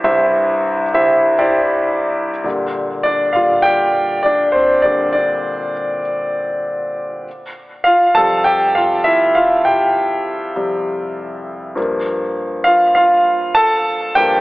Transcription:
<<
  \new Staff \with { instrumentName = "Grand piano" } { \time 4/4 \key bes \lydian \tempo 4 = 100 <e' g' c'' e''>4~ <e' g' c'' e''>16 r16 <e' g' c'' e''>8. <e' g' c'' d''>4. r16 | r4 <d' d''>8 <f' f''>8 <g' g''>4 <d' d''>8 <c' c''>8 | <d' d''>8 <d' d''>4. r2 | r4 <f' f''>8 <a' a''>8 <g' g''>8 <f' f''>8 <e' e''>8 <f' f''>8 |
<g' g''>4. r2 r8 | r4 <f' f''>8 <f' f''>4 <a' a''>4 <g' g''>8 | }
  \new Staff \with { instrumentName = "Grand piano" } { \clef bass \time 4/4 \key bes \lydian <c, g,>1 | <bes, d g>4. <bes, d g>8 r2 | <bes, d g>4. r2 r8 | r4. <f, c g>8 r2 |
r4. <f, c g>2 <g, f bes>8~ | <g, f bes>4 r2 r8 <g, f bes>8 | }
>>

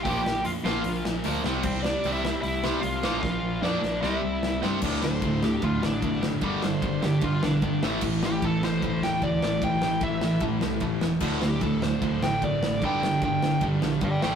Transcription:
<<
  \new Staff \with { instrumentName = "Lead electric guitar" } { \time 4/4 \key d \minor \tempo 4 = 150 <g' g''>4 <f' f''>8 <f' f''>4 r4. | <c' c''>8 <d' d''>8. <e' e''>8. <e' e''>4 <f' f''>4 | <f' f''>4 <d' d''>4 <e' e''>4. r8 | r8 c''4 g'8 f'8 d'4 r8 |
r8 c''4 g'8 f'8 d'4 r8 | r8 g'8 a'8 c''4 g''8 d''4 | g''4 e''4 r2 | r8 g'8 a'8 c''4 g''8 d''4 |
g''4 g''4 r4 <d'' g''>8 <d'' g''>8 | }
  \new Staff \with { instrumentName = "Distorted electric guitar" } { \clef bass \time 4/4 \key d \minor <bes, f bes>2 <bes, f bes>4. <c g c'>8~ | <c g c'>4. <c g c'>2 <bes, f bes>8~ | <bes, f bes>4. <bes, f bes>8 <c g c'>2 | <d, a, d>2 <d, a, d>2 |
<g, d g>2 <g, d g>4. <a, e a>8~ | <a, e a>4. <a, e a>2 <a, e a>8~ | <a, e a>4. <a, e a>2 r8 | <d, a, d>2 <d, a, d>2 |
<g, d g>2 <g, d g>4. <a, e a>8 | }
  \new Staff \with { instrumentName = "Distorted electric guitar" } { \clef bass \time 4/4 \key d \minor <bes, f bes>8 r4 <bes, f bes>8 r4 <bes, f bes>8 <c g c'>8 | r4 <c g c'>8 r4 <c g c'>8 r8 <bes, f bes>8 | r4 <bes, f bes>8 r8 <c g c'>8 r4 <c g c'>8 | <d, a, d>8 <d, a,>8 <d, a,>8 <d, a,>8 <d, a,>8 <d, a,>8 <d, a,>8 <d, a,>8 |
<g, d g>8 <g, d>8 <g, d>8 <g, d>8 <g, d>8 <g, d>8 <g, d>8 <a, e a>8 | <a, e>8 <a, e>8 <a, e>8 <a, e>8 <a, e>8 <a, e>8 <a, e>8 <a, e>8 | <a, e>8 <a, e>8 <a, e>8 <a, e>8 <a, e>8 <a, e>8 <a, e>8 <a, e>8 | <d, a, d>8 <d, a,>8 <d, a,>8 <d, a,>8 <d, a,>8 <d, a,>8 <d, a,>8 <d, a,>8 |
<g, d g>8 <g, d>8 <g, d>8 <g, d>8 <g, d>8 <g, d>8 <g, d>8 <a, e a>8 | }
  \new Staff \with { instrumentName = "Tine electric piano" } { \clef bass \time 4/4 \key d \minor bes,,8 bes,,8 f,8 bes,,8 bes,,8 bes,,8 d,8 c,8 | c,4 c,4 c,4 c,8 bes,,8 | bes,,8 bes,,8 f,8 bes,,8 c,8 c,8 c,8 g,8 | d,8 d,8 d,4 d,8 a,,8 g,,8 fis,,8 |
g,,8 g,,8 g,,8 g,,8 g,8 bes,,8 g,8 a,,8 | a,,8 a,,8 a,,4 a,,8 e,,8 d,8 a,,8 | a,,8 a,,8 a,,8 a,,8 a,8 c,8 a,8 e,,8 | d,8 d,8 d,4 d,8 a,,8 g,,8 a,,8 |
g,,8 g,,8 g,,8 g,,8 g,8 bes,,8 g,8 a,,8 | }
  \new DrumStaff \with { instrumentName = "Drums" } \drummode { \time 4/4 <hho bd>8 sn8 hho8 sn8 hho8 sn8 hho8 sn8 | <cymc bd>8 sn8 hho8 sn8 hho8 sn8 hho8 sn8 | <bd sn>4 sn8 sn8 sn4 sn8 sn8 | <cymc bd>8 sn8 <bd cymr>8 sn8 <bd cymr>8 sn8 <bd cymr>8 sn8 |
<bd cymr>8 sn8 <bd cymr>8 sn8 <bd cymr>8 sn8 <bd cymr>8 sn8 | <cymc bd>8 sn8 <bd cymr>8 sn8 <bd cymr>8 sn8 <bd cymr>8 sn8 | <bd cymr>8 sn8 <bd cymr>8 sn8 <bd cymr>8 sn8 <bd cymr>8 sn8 | <cymc bd>8 sn8 <bd cymr>8 sn8 <bd cymr>8 sn8 <bd cymr>8 sn8 |
<bd cymr>8 sn8 <bd cymr>8 sn8 <bd cymr>8 sn8 <bd cymr>8 sn8 | }
>>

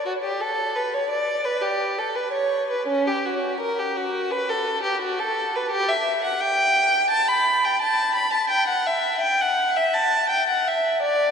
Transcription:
\new Staff \with { instrumentName = "Violin" } { \time 4/4 \key g \lydian \tempo 4 = 85 fis'16 g'16 a'8 b'16 cis''16 d''8 b'16 g'8 a'16 b'16 cis''8 b'16 | cis'16 g'16 fis'8 bes'16 g'16 fis'8 b'16 a'8 g'16 fis'16 a'8 b'16 | g'16 e''8 fis''16 g''4 a''16 b''8 g''16 a''8 b''16 a''16 | g''16 fis''16 e''8 g''16 fis''8 e''16 a''8 g''16 fis''16 e''8 d''8 | }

